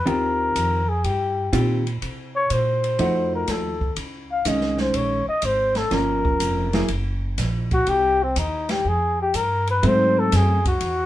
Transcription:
0.06 upright bass D#2, hollow-body jazz guitar D#3 C4 F4 G4, flugelhorn A#4, kick, ride
0.55 upright bass F2, kick, hi-hat pedal, ride
0.89 flugelhorn G#4
1.04 upright bass G2, flugelhorn G4, kick, ride
1.53 upright bass A#2, hollow-body jazz guitar D#3 C4 F4 G4, kick, hi-hat pedal, ride
1.87 ride
2.02 upright bass C3, kick, ride
2.36 flugelhorn C#5
2.50 upright bass A#2, flugelhorn C5, kick, hi-hat pedal, ride
2.84 ride
2.99 upright bass F2, hollow-body jazz guitar F3 A3 D#4 F#4, kick, ride
3.35 flugelhorn A#4
3.48 upright bass D#2, flugelhorn A4, kick, snare, hi-hat pedal, ride
3.81 kick
3.96 upright bass C#2, kick, ride
4.32 flugelhorn F5
4.45 upright bass C2, hollow-body jazz guitar D#3 G#3 C#4, flugelhorn D#5, kick, hi-hat pedal, ride
4.61 snare
4.78 flugelhorn C5, snare
4.94 upright bass A#1, flugelhorn C#5, kick, ride
5.27 flugelhorn D#5, muted upright bass stroke
5.42 upright bass G#1, flugelhorn C5, kick, hi-hat pedal, ride
5.75 flugelhorn A4, snare, ride
5.91 upright bass G1, hollow-body jazz guitar F3 A#3 C#4, flugelhorn A#4, kick, snare, ride
6.25 kick
6.40 upright bass F1, hi-hat pedal, ride
6.73 hollow-body jazz guitar F#3 A#3 E4 G#4, snare, ride
6.88 upright bass F#1, kick, ride
7.38 upright bass A#1, kick, snare, hi-hat pedal, ride
7.71 flugelhorn F#4, kick, ride
7.87 upright bass C2, flugelhorn G4, ride
8.23 flugelhorn C4
8.36 upright bass D#2, flugelhorn D#4, kick, hi-hat pedal, ride
8.69 flugelhorn G4, snare, ride
8.85 upright bass F2, flugelhorn G#4, kick
9.22 flugelhorn G4
9.34 upright bass G2, flugelhorn A#4, kick, hi-hat pedal, ride
9.67 flugelhorn B4, ride
9.83 upright bass G#2, hollow-body jazz guitar F#3 A3 C4, flugelhorn C5, kick, ride
10.19 flugelhorn A4
10.32 upright bass F#2, flugelhorn G#4, kick, snare, hi-hat pedal, ride
10.65 flugelhorn F#4, kick, ride
10.81 upright bass E2, kick, ride

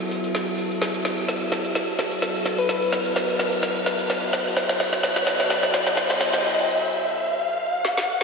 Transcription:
Already playing: ambient pad F#4 B4 E5 A5, riser
0.11 open hi-hat
0.24 closed hi-hat
0.35 snare, closed hi-hat
0.48 closed hi-hat
0.58 open hi-hat
0.71 closed hi-hat
0.82 snare, closed hi-hat
0.94 closed hi-hat
1.05 snare, open hi-hat
1.18 closed hi-hat
1.28 snare, closed hi-hat
1.41 closed hi-hat
1.52 snare, open hi-hat
1.65 closed hi-hat
1.75 snare, closed hi-hat
1.99 snare, open hi-hat
2.12 closed hi-hat
2.22 snare, closed hi-hat
2.46 snare, open hi-hat
2.58 synth pluck B4, closed hi-hat
2.69 snare, closed hi-hat
2.82 closed hi-hat
2.93 snare, open hi-hat
3.05 closed hi-hat
3.16 snare, closed hi-hat
3.29 closed hi-hat
3.39 snare, open hi-hat
3.52 closed hi-hat
3.63 snare, closed hi-hat
3.86 snare, open hi-hat
3.99 closed hi-hat
4.10 snare, closed hi-hat
4.33 snare, open hi-hat
4.46 closed hi-hat
4.57 snare, closed hi-hat
4.69 snare, closed hi-hat
4.80 snare, open hi-hat
4.93 snare, closed hi-hat
5.03 snare, closed hi-hat
5.16 snare, closed hi-hat
5.27 snare, open hi-hat
5.40 snare, closed hi-hat
5.50 snare, closed hi-hat
5.63 snare
5.74 snare, open hi-hat
5.87 snare, closed hi-hat
5.97 snare, closed hi-hat
6.10 snare
6.21 snare, open hi-hat
6.33 snare, closed hi-hat
7.85 snare
7.97 snare

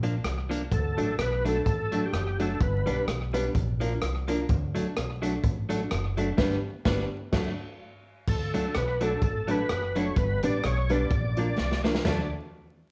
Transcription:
Already playing: upright bass A#1
0.03 clean electric guitar F3 A#3 D4, closed hi-hat
0.24 upright bass C2, cross-stick, closed hi-hat
0.49 clean electric guitar F3 A#3 D4, closed hi-hat
0.71 upright bass D2, tonewheel organ A4, kick, closed hi-hat
0.97 upright bass A1, clean electric guitar F#3 A3 D4, upright piano D4 F#4 A4, closed hi-hat
1.19 upright bass B1, tonewheel organ B4, cross-stick, closed hi-hat
1.45 clean electric guitar F#3 A3 D4, upright piano D4 F#4 A4, tonewheel organ A4, closed hi-hat
1.66 upright bass A1, kick, closed hi-hat
1.91 clean electric guitar F#3 A3 D4, upright piano D4 F#4 A4, closed hi-hat
2.05 tonewheel organ G4
2.13 upright bass F#1, cross-stick, closed hi-hat
2.38 clean electric guitar F#3 A3 D4, upright piano D4 F#4 A4, tonewheel organ A4, closed hi-hat
2.60 upright bass G1, tonewheel organ B4, kick, closed hi-hat
2.86 upright bass B1, clean electric guitar G3 B3 D4, upright piano D4 G4 B4, closed hi-hat
3.07 upright bass B1, cross-stick, closed hi-hat
3.33 clean electric guitar G3 B3 D4, upright piano D4 G4 B4, closed hi-hat
3.55 upright bass A#1, kick, closed hi-hat
3.80 clean electric guitar F3 A#3 D4, upright piano D4 F4 A#4, closed hi-hat
4.01 upright bass C2, upright piano F4 A#4, cross-stick, closed hi-hat
4.27 clean electric guitar F3 A#3 D4, upright piano D4 F4 A#4, closed hi-hat
4.49 upright bass D2, kick, closed hi-hat
4.75 upright bass C#2, clean electric guitar F#3 A3 D4, upright piano D4 F#4 A4, closed hi-hat
4.97 upright bass B1, cross-stick, closed hi-hat
5.22 clean electric guitar F#3 A3 D4, upright piano D4 F#4 A4, closed hi-hat
5.44 upright bass A1, kick, closed hi-hat
5.69 clean electric guitar F#3 A3 D4, upright piano D4 F#4 A4, closed hi-hat
5.91 upright bass F#1, cross-stick, closed hi-hat
6.17 clean electric guitar F#3 A3 D4, upright piano D4 F#4 A4, closed hi-hat
6.37 upright bass G1, clean electric guitar G3 B3 D4, upright piano D4 G4 B4, kick, snare, crash
6.85 upright bass G1, clean electric guitar G3 B3 D4, upright piano D4 G4 B4, kick, snare
7.31 upright bass D2, clean electric guitar F#3 A3 D4, upright piano D4 F#4 A4, kick, snare, crash
8.28 upright bass D2, tonewheel organ A4, kick, crash
8.53 upright bass C#2, clean electric guitar F#3 A3 D4, upright piano D4 F#4 A4, closed hi-hat
8.75 upright bass B1, tonewheel organ B4, cross-stick, closed hi-hat
9.00 clean electric guitar F#3 A3 D4, upright piano D4 F#4 A4, tonewheel organ A4, closed hi-hat
9.22 upright bass A1, tonewheel organ A4, kick, closed hi-hat
9.48 clean electric guitar F#3 A3 D4, upright piano D4 F#4 A4, tonewheel organ B4, closed hi-hat
9.69 upright bass F#1, cross-stick, closed hi-hat
9.95 clean electric guitar F#3 A3 D4, upright piano D4 F#4 A4, tonewheel organ C#5, closed hi-hat
10.16 upright bass G1, tonewheel organ B4, kick, closed hi-hat
10.43 upright bass A1, clean electric guitar G3 B3 D4, upright piano D4 G4 B4, tonewheel organ D5, closed hi-hat
10.64 upright bass B1, tonewheel organ C#5, cross-stick, closed hi-hat
10.89 clean electric guitar G3 B3 D4, upright piano D4 G4 B4, tonewheel organ D5, closed hi-hat
11.11 upright bass A#1, kick, closed hi-hat
11.36 clean electric guitar F3 A#3 D4, upright piano D4 F4 A#4, closed hi-hat
11.58 upright bass C2, upright piano F4 A#4, snare
11.72 snare
11.84 clean electric guitar F3 A#3 D4, upright piano D4 F4 A#4, snare
11.95 snare
12.04 upright bass D2, clean electric guitar F#3 A3 D4, upright piano D4 F#4 A4, tonewheel organ D5, snare, floor tom, crash

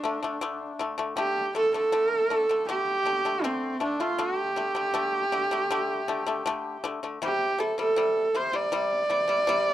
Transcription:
Already playing: horsehead fiddle D4
0.04 pipa D3 A3
0.23 pipa D3 A3
0.41 pipa D3 A3
0.79 pipa D3 A3
0.98 pipa D3 A3
1.17 pipa D3 A3, horsehead fiddle G4
1.55 pipa D3 A3, horsehead fiddle A4
1.74 pipa D3 A3, horsehead fiddle A4
1.92 pipa D3 A3
2.30 pipa D3 A3
2.49 pipa D3 A3
2.69 pipa D3 A3, horsehead fiddle G4
3.06 pipa D3 A3
3.25 pipa D3 A3
3.44 pipa D3 A3, horsehead fiddle C4
3.80 pipa D3 A3, horsehead fiddle D4
4.00 pipa D3 A3, horsehead fiddle F4
4.18 pipa D3 A3, horsehead fiddle G4
4.56 pipa D3 A3
4.75 pipa D3 A3
4.94 pipa D3 A3
5.32 pipa D3 A3
5.51 pipa D3 A3
5.71 pipa D3 A3
6.08 pipa D3 A3
6.26 pipa D3 A3
6.46 pipa D3 A3
6.84 pipa D3 A3
7.03 pipa D3 A3
7.22 pipa C3 G3, horsehead fiddle G4
7.58 pipa C3 G3, horsehead fiddle A4
7.78 pipa C3 G3, horsehead fiddle A4
7.96 pipa C3 G3
8.35 pipa C3 G3, horsehead fiddle C5
8.53 pipa C3 G3, horsehead fiddle D5
8.72 pipa C3 G3
9.10 pipa C3 G3
9.28 pipa C3 G3
9.47 pipa C3 G3

